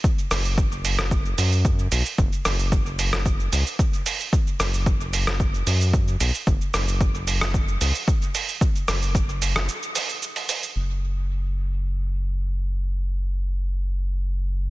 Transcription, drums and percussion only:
0.04 kick, cabasa
0.18 cabasa
0.31 cross-stick, open hi-hat, cabasa
0.45 cabasa
0.58 kick, cabasa
0.72 cabasa
0.85 open hi-hat, cabasa
0.99 cross-stick, cabasa
1.11 kick, cabasa
1.25 cabasa
1.38 open hi-hat, cabasa
1.52 cabasa
1.65 kick, cabasa
1.79 cabasa
1.92 open hi-hat, cabasa
2.06 cabasa
2.18 kick, cabasa
2.32 cabasa
2.45 cross-stick, open hi-hat, cabasa
2.59 cabasa
2.72 kick, cabasa
2.86 cabasa
2.99 open hi-hat, cabasa
3.13 cross-stick, cabasa
3.26 kick, cabasa
3.40 cabasa
3.53 open hi-hat, cabasa
3.67 cabasa
3.79 kick, cabasa
3.93 cabasa
4.06 open hi-hat, cabasa
4.20 cabasa
4.33 kick, cabasa
4.47 cabasa
4.60 cross-stick, open hi-hat, cabasa
4.74 cabasa
4.86 kick, cabasa
5.00 cabasa
5.13 open hi-hat, cabasa
5.27 cross-stick, cabasa
5.40 kick, cabasa
5.54 cabasa
5.67 open hi-hat, cabasa
5.81 cabasa
5.93 kick, cabasa
6.08 cabasa
6.20 open hi-hat, cabasa
6.34 cabasa
6.47 kick, cabasa
6.61 cabasa
6.74 cross-stick, open hi-hat, cabasa
6.88 cabasa
7.01 kick, cabasa
7.15 cabasa
7.27 open hi-hat, cabasa
7.41 cross-stick, cabasa
7.54 kick, cabasa
7.68 cabasa
7.81 open hi-hat, cabasa
7.95 cabasa
8.08 kick, cabasa
8.22 cabasa
8.35 open hi-hat, cabasa
8.49 cabasa
8.61 kick, cabasa
8.75 cabasa
8.88 cross-stick, open hi-hat, cabasa
9.02 cabasa
9.15 kick, cabasa
9.29 cabasa
9.42 open hi-hat, cabasa
9.56 cross-stick, cabasa
9.69 cabasa
9.83 cabasa
9.95 open hi-hat, cabasa
10.09 cabasa
10.22 cabasa
10.36 open hi-hat, cabasa
10.49 open hi-hat, cabasa
10.63 cabasa

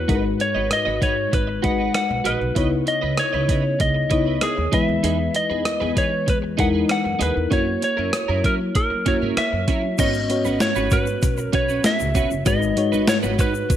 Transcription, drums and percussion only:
0.09 kick, closed hi-hat
0.40 closed hi-hat
0.71 cross-stick, closed hi-hat
1.02 kick, closed hi-hat
1.33 kick, closed hi-hat
1.64 kick, closed hi-hat
1.94 cross-stick, closed hi-hat
2.25 closed hi-hat
2.56 kick, closed hi-hat
2.87 closed hi-hat
3.17 cross-stick, closed hi-hat
3.49 kick, closed hi-hat
3.80 kick, closed hi-hat
4.11 kick, closed hi-hat
4.41 cross-stick, closed hi-hat
4.73 kick, closed hi-hat
5.04 closed hi-hat
5.35 closed hi-hat
5.65 cross-stick, closed hi-hat
5.97 kick, closed hi-hat
6.28 kick, closed hi-hat
6.59 kick, closed hi-hat
6.89 cross-stick, closed hi-hat
7.21 closed hi-hat
7.52 kick, closed hi-hat
7.82 closed hi-hat
8.13 cross-stick, closed hi-hat
8.44 kick, closed hi-hat
8.75 kick, closed hi-hat
9.06 kick, closed hi-hat
9.37 cross-stick, closed hi-hat
9.68 kick, closed hi-hat
9.99 kick, closed hi-hat, crash, shaker
10.14 shaker
10.30 closed hi-hat
10.45 shaker
10.60 snare, closed hi-hat, shaker
10.75 shaker
10.91 kick, closed hi-hat, shaker
11.07 shaker
11.23 kick, closed hi-hat, shaker
11.38 shaker
11.53 kick, closed hi-hat
11.69 shaker
11.84 snare, closed hi-hat, shaker
12.00 shaker
12.15 kick, closed hi-hat, shaker
12.31 shaker
12.46 kick, closed hi-hat, shaker
12.62 shaker
12.77 closed hi-hat
12.93 shaker
13.08 snare, closed hi-hat, shaker
13.23 shaker
13.39 kick, closed hi-hat, shaker
13.55 shaker
13.70 kick, closed hi-hat, shaker

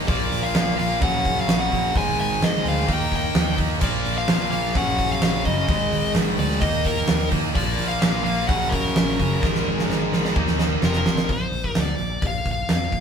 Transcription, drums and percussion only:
0.08 kick, open hi-hat
0.32 open hi-hat
0.55 snare, open hi-hat
0.79 open hi-hat
1.02 kick, open hi-hat
1.25 kick, open hi-hat
1.49 snare, open hi-hat
1.72 kick, open hi-hat
1.96 kick, open hi-hat
2.19 open hi-hat
2.42 snare, open hi-hat
2.65 open hi-hat
2.77 snare
2.88 kick, open hi-hat
3.12 kick, open hi-hat
3.35 snare, open hi-hat
3.58 kick, open hi-hat
3.81 kick, crash
4.05 open hi-hat
4.28 snare, open hi-hat
4.52 open hi-hat
4.75 kick, open hi-hat
4.99 kick, open hi-hat
5.11 snare
5.22 snare, open hi-hat
5.45 kick, open hi-hat
5.69 kick, open hi-hat
5.92 open hi-hat
6.15 snare, open hi-hat
6.38 open hi-hat
6.50 snare
6.61 kick, open hi-hat
6.84 kick, open hi-hat
6.97 snare
7.08 snare, open hi-hat
7.31 kick, open hi-hat
7.55 kick, open hi-hat
7.79 open hi-hat
8.02 snare, open hi-hat
8.26 open hi-hat
8.49 kick, open hi-hat
8.72 kick, open hi-hat
8.85 snare
8.96 snare, open hi-hat
9.20 kick, open hi-hat
9.43 kick, snare
9.55 snare
9.79 snare
9.90 snare
10.13 snare
10.25 snare
10.36 kick
10.47 snare
10.59 snare
10.82 snare
10.93 snare
11.06 snare
11.17 snare
11.29 kick, open hi-hat
11.53 open hi-hat
11.64 kick
11.75 snare, open hi-hat
11.98 open hi-hat
12.22 kick, open hi-hat
12.46 kick, open hi-hat
12.69 snare, open hi-hat
12.92 kick, open hi-hat

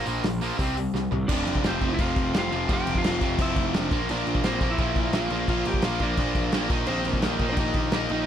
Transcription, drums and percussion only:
0.06 open hi-hat
0.24 snare, open hi-hat
0.41 open hi-hat
0.59 kick, open hi-hat
0.77 open hi-hat
0.95 snare
1.12 floor tom
1.29 kick, crash
1.47 crash
1.55 kick
1.64 snare, crash
1.81 kick, crash
1.98 kick, crash
2.16 kick, crash
2.34 snare, crash
2.52 crash
2.69 kick, crash
2.87 crash
2.95 kick
3.04 snare, crash
3.21 kick, crash
3.39 kick, crash
3.56 kick, crash
3.74 snare, crash
3.91 kick, crash
4.09 crash
4.27 crash
4.35 kick
4.44 snare, crash
4.61 kick, crash
4.78 kick, crash
4.96 kick, crash
5.13 snare, crash
5.30 crash
5.48 kick, crash
5.65 crash
5.74 kick
5.82 snare, crash
6.00 kick, crash
6.17 kick, crash
6.35 kick, crash
6.52 snare, crash
6.70 kick, crash
6.86 crash
7.05 crash
7.13 kick
7.22 snare, crash
7.39 kick, crash
7.57 kick, crash
7.74 kick, crash
7.92 snare, crash
8.09 crash

